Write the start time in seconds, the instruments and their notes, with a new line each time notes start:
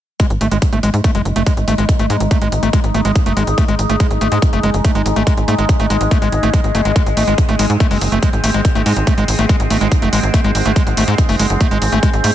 0.20 synth drone G#3 D#4, acid bass G#3, ambient pad D#4, kick, closed hi-hat
0.30 analog synth bass G#1, closed hi-hat
0.41 analog synth bass G#1, acid bass A3, ambient pad G#4, closed hi-hat
0.51 analog synth bass G#1, acid bass G#3, closed hi-hat
0.62 kick, closed hi-hat
0.73 analog synth bass G#1, acid bass A3, closed hi-hat
0.83 analog synth bass G#1, acid bass G#3, closed hi-hat
0.94 analog synth bass G#2, closed hi-hat
1.04 acid bass A3, ambient pad G#5, kick, closed hi-hat
1.15 analog synth bass F#1, acid bass G#3, closed hi-hat
1.25 analog synth bass F#1, closed hi-hat
1.36 analog synth bass F#1, acid bass A3, closed hi-hat
1.47 acid bass G#3, kick, closed hi-hat
1.57 analog synth bass G#1, closed hi-hat
1.68 analog synth bass G#1, acid bass A3, closed hi-hat
1.78 analog synth bass G#1, acid bass G#3, closed hi-hat
1.89 kick, closed hi-hat
1.99 analog synth bass G#1, acid bass A3, closed hi-hat
2.10 analog synth bass G#2, acid bass G#3, closed hi-hat
2.20 analog synth bass G#1, closed hi-hat
2.31 acid bass A3, kick, closed hi-hat
2.42 analog synth bass G#1, acid bass G#3, closed hi-hat
2.52 analog synth bass G#1, closed hi-hat
2.63 analog synth bass G#1, acid bass A3, closed hi-hat
2.73 acid bass G#3, kick, closed hi-hat
2.84 analog synth bass G#1, closed hi-hat
2.94 analog synth bass G#1, acid bass A3, closed hi-hat
3.05 analog synth bass G#1, acid bass G#3, closed hi-hat
3.16 kick, closed hi-hat
3.26 analog synth bass F#1, acid bass A3, closed hi-hat
3.37 analog synth bass G#1, acid bass G#3, closed hi-hat
3.47 analog synth bass G#1, closed hi-hat
3.58 acid bass A3, kick, closed hi-hat
3.68 analog synth bass G#1, acid bass G#3, closed hi-hat
3.79 analog synth bass G#1, closed hi-hat
3.89 analog synth bass G#1, acid bass A3, closed hi-hat
4.00 acid bass G#3, kick, closed hi-hat
4.11 analog synth bass G#1, closed hi-hat
4.21 analog synth bass G#1, acid bass A3, closed hi-hat
4.32 analog synth bass G#2, acid bass G#3, closed hi-hat
4.42 kick, closed hi-hat
4.53 analog synth bass F#1, acid bass A3, closed hi-hat
4.63 analog synth bass F#1, acid bass G#3, closed hi-hat
4.74 analog synth bass F#1, closed hi-hat
4.85 acid bass A3, kick, closed hi-hat
4.95 analog synth bass G#1, acid bass G#3, closed hi-hat
5.06 analog synth bass G#1, closed hi-hat
5.16 analog synth bass G#1, acid bass A3, closed hi-hat
5.27 acid bass G#3, kick, closed hi-hat
5.37 analog synth bass G#1, closed hi-hat
5.48 analog synth bass G#2, acid bass A3, closed hi-hat
5.58 analog synth bass G#1, acid bass G#3, closed hi-hat
5.69 kick, closed hi-hat
5.80 analog synth bass G#1, acid bass A3, closed hi-hat
5.90 analog synth bass G#1, acid bass G#3, closed hi-hat
6.01 analog synth bass G#1, closed hi-hat
6.11 acid bass A3, kick, closed hi-hat
6.22 analog synth bass G#1, acid bass G#3, closed hi-hat
6.32 analog synth bass G#1, closed hi-hat
6.43 analog synth bass G#1, acid bass A3, closed hi-hat
6.54 acid bass G#3, kick, closed hi-hat
6.64 analog synth bass G#1, closed hi-hat
6.75 analog synth bass F#1, acid bass A3, closed hi-hat
6.85 analog synth bass G#1, acid bass G#3, closed hi-hat
6.96 acid bass G#3, synth drone C4, kick, closed hi-hat
7.06 analog synth bass G#1, closed hi-hat
7.17 analog synth bass G#1, acid bass A3, open hi-hat
7.27 analog synth bass G#1, acid bass G#3, closed hi-hat
7.38 kick, closed hi-hat
7.49 analog synth bass G#1, acid bass A3, closed hi-hat
7.59 analog synth bass G#1, acid bass G#3, open hi-hat
7.70 analog synth bass G#2, closed hi-hat
7.80 acid bass A3, ambient pad F#5, kick, closed hi-hat
7.91 analog synth bass F#1, acid bass G#3, open hi-hat
8.01 analog synth bass F#1, open hi-hat
8.12 analog synth bass F#1, acid bass A3, closed hi-hat
8.23 acid bass G#3, kick, closed hi-hat
8.33 analog synth bass G#1, closed hi-hat
8.44 analog synth bass G#1, acid bass A3, open hi-hat
8.54 analog synth bass G#1, acid bass G#3, closed hi-hat
8.65 kick, closed hi-hat
8.75 analog synth bass G#1, acid bass A3, closed hi-hat
8.86 analog synth bass G#2, acid bass G#3, open hi-hat
8.96 analog synth bass G#1, closed hi-hat
9.07 acid bass A3, kick, closed hi-hat
9.18 analog synth bass G#1, acid bass G#3, closed hi-hat
9.28 analog synth bass G#1, open hi-hat
9.39 analog synth bass G#1, acid bass A3, closed hi-hat
9.49 acid bass G#3, kick, closed hi-hat
9.60 analog synth bass G#1, closed hi-hat
9.70 analog synth bass G#1, acid bass A3, open hi-hat
9.81 analog synth bass G#1, acid bass G#3, closed hi-hat
9.92 kick, closed hi-hat
10.02 analog synth bass F#1, acid bass A3, closed hi-hat
10.13 analog synth bass G#1, acid bass G#3, open hi-hat
10.23 analog synth bass G#1, closed hi-hat
10.34 acid bass A3, kick, closed hi-hat
10.44 analog synth bass G#1, acid bass G#3, closed hi-hat
10.55 analog synth bass G#1, open hi-hat
10.66 analog synth bass G#1, acid bass A3, closed hi-hat
10.76 acid bass G#3, kick, closed hi-hat
10.87 analog synth bass G#1, closed hi-hat
10.97 analog synth bass G#1, acid bass A3, open hi-hat
11.08 analog synth bass G#2, acid bass G#3, closed hi-hat
11.18 kick, closed hi-hat
11.29 analog synth bass F#1, acid bass A3, open hi-hat
11.39 analog synth bass F#1, acid bass G#3, open hi-hat
11.50 analog synth bass F#1, closed hi-hat
11.61 acid bass A3, kick, closed hi-hat
11.71 analog synth bass G#1, acid bass G#3, closed hi-hat
11.82 analog synth bass G#1, open hi-hat
11.92 analog synth bass G#1, acid bass A3, closed hi-hat
12.03 acid bass G#3, kick, closed hi-hat
12.13 analog synth bass G#1, closed hi-hat
12.24 analog synth bass G#2, acid bass A3, open hi-hat